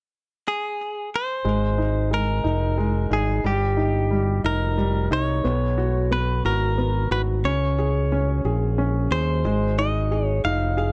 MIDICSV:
0, 0, Header, 1, 4, 480
1, 0, Start_track
1, 0, Tempo, 666667
1, 1042, Time_signature, 6, 3, 24, 8
1, 7862, End_track
2, 0, Start_track
2, 0, Title_t, "Clean electric guitar"
2, 0, Program_c, 0, 27
2, 346, Note_on_c, 0, 68, 66
2, 785, Note_off_c, 0, 68, 0
2, 832, Note_on_c, 0, 72, 80
2, 1508, Note_off_c, 0, 72, 0
2, 1540, Note_on_c, 0, 70, 75
2, 2255, Note_on_c, 0, 68, 70
2, 2272, Note_off_c, 0, 70, 0
2, 2492, Note_off_c, 0, 68, 0
2, 2495, Note_on_c, 0, 67, 74
2, 3179, Note_off_c, 0, 67, 0
2, 3210, Note_on_c, 0, 70, 81
2, 3657, Note_off_c, 0, 70, 0
2, 3694, Note_on_c, 0, 73, 91
2, 4407, Note_off_c, 0, 73, 0
2, 4410, Note_on_c, 0, 71, 76
2, 4646, Note_off_c, 0, 71, 0
2, 4649, Note_on_c, 0, 70, 80
2, 5124, Note_off_c, 0, 70, 0
2, 5127, Note_on_c, 0, 71, 79
2, 5191, Note_off_c, 0, 71, 0
2, 5365, Note_on_c, 0, 73, 77
2, 6053, Note_off_c, 0, 73, 0
2, 6566, Note_on_c, 0, 72, 82
2, 7044, Note_off_c, 0, 72, 0
2, 7047, Note_on_c, 0, 75, 84
2, 7385, Note_off_c, 0, 75, 0
2, 7385, Note_on_c, 0, 73, 84
2, 7493, Note_off_c, 0, 73, 0
2, 7522, Note_on_c, 0, 77, 80
2, 7862, Note_off_c, 0, 77, 0
2, 7862, End_track
3, 0, Start_track
3, 0, Title_t, "Upright piano"
3, 0, Program_c, 1, 0
3, 1042, Note_on_c, 1, 56, 52
3, 1169, Control_c, 1, 64, 127
3, 1281, Note_on_c, 1, 63, 39
3, 1510, Note_off_c, 1, 56, 0
3, 1520, Note_on_c, 1, 56, 43
3, 1745, Note_off_c, 1, 63, 0
3, 1756, Note_on_c, 1, 63, 49
3, 1989, Note_off_c, 1, 56, 0
3, 2000, Note_on_c, 1, 56, 49
3, 2224, Note_off_c, 1, 63, 0
3, 2235, Note_on_c, 1, 63, 46
3, 2466, Note_off_c, 1, 56, 0
3, 2471, Note_off_c, 1, 63, 0
3, 2479, Note_on_c, 1, 55, 58
3, 2492, Control_c, 1, 64, 0
3, 2598, Control_c, 1, 64, 127
3, 2713, Note_on_c, 1, 63, 43
3, 2947, Note_off_c, 1, 55, 0
3, 2957, Note_on_c, 1, 55, 46
3, 3187, Note_off_c, 1, 63, 0
3, 3198, Note_on_c, 1, 63, 46
3, 3426, Note_off_c, 1, 55, 0
3, 3436, Note_on_c, 1, 55, 49
3, 3667, Note_off_c, 1, 63, 0
3, 3678, Note_on_c, 1, 63, 51
3, 3904, Note_off_c, 1, 55, 0
3, 3912, Note_off_c, 1, 63, 0
3, 3918, Note_on_c, 1, 59, 56
3, 3932, Control_c, 1, 64, 0
3, 4052, Control_c, 1, 64, 127
3, 4160, Note_on_c, 1, 66, 46
3, 4389, Note_off_c, 1, 59, 0
3, 4400, Note_on_c, 1, 59, 50
3, 4632, Note_off_c, 1, 66, 0
3, 4643, Note_on_c, 1, 66, 46
3, 4870, Note_off_c, 1, 59, 0
3, 4881, Note_on_c, 1, 59, 45
3, 5109, Note_off_c, 1, 66, 0
3, 5120, Note_on_c, 1, 66, 43
3, 5346, Note_off_c, 1, 59, 0
3, 5353, Note_off_c, 1, 66, 0
3, 5364, Note_on_c, 1, 61, 52
3, 5371, Control_c, 1, 64, 0
3, 5477, Control_c, 1, 64, 127
3, 5606, Note_on_c, 1, 68, 41
3, 5837, Note_off_c, 1, 61, 0
3, 5848, Note_on_c, 1, 61, 43
3, 6074, Note_off_c, 1, 68, 0
3, 6085, Note_on_c, 1, 68, 45
3, 6312, Note_off_c, 1, 61, 0
3, 6323, Note_on_c, 1, 61, 47
3, 6551, Note_off_c, 1, 68, 0
3, 6562, Note_on_c, 1, 68, 43
3, 6786, Note_off_c, 1, 61, 0
3, 6793, Note_off_c, 1, 68, 0
3, 6802, Note_on_c, 1, 56, 57
3, 6809, Control_c, 1, 64, 0
3, 6950, Control_c, 1, 64, 127
3, 7044, Note_on_c, 1, 63, 44
3, 7281, Note_on_c, 1, 68, 45
3, 7512, Note_off_c, 1, 63, 0
3, 7523, Note_on_c, 1, 63, 48
3, 7745, Note_off_c, 1, 68, 0
3, 7756, Note_on_c, 1, 68, 48
3, 7862, Note_off_c, 1, 56, 0
3, 7862, Note_off_c, 1, 63, 0
3, 7862, Note_off_c, 1, 68, 0
3, 7862, End_track
4, 0, Start_track
4, 0, Title_t, "Fingered electric bass"
4, 0, Program_c, 2, 33
4, 1044, Note_on_c, 2, 32, 67
4, 1734, Note_off_c, 2, 32, 0
4, 1761, Note_on_c, 2, 29, 70
4, 2212, Note_off_c, 2, 29, 0
4, 2239, Note_on_c, 2, 32, 68
4, 2466, Note_off_c, 2, 32, 0
4, 2479, Note_on_c, 2, 31, 81
4, 3172, Note_off_c, 2, 31, 0
4, 3199, Note_on_c, 2, 29, 74
4, 3651, Note_off_c, 2, 29, 0
4, 3681, Note_on_c, 2, 36, 73
4, 3907, Note_off_c, 2, 36, 0
4, 3923, Note_on_c, 2, 35, 82
4, 4613, Note_off_c, 2, 35, 0
4, 4640, Note_on_c, 2, 32, 74
4, 5091, Note_off_c, 2, 32, 0
4, 5118, Note_on_c, 2, 32, 77
4, 5345, Note_off_c, 2, 32, 0
4, 5358, Note_on_c, 2, 37, 80
4, 6050, Note_off_c, 2, 37, 0
4, 6082, Note_on_c, 2, 34, 74
4, 6532, Note_off_c, 2, 34, 0
4, 6559, Note_on_c, 2, 39, 76
4, 6785, Note_off_c, 2, 39, 0
4, 6799, Note_on_c, 2, 32, 73
4, 7489, Note_off_c, 2, 32, 0
4, 7521, Note_on_c, 2, 29, 64
4, 7862, Note_off_c, 2, 29, 0
4, 7862, End_track
0, 0, End_of_file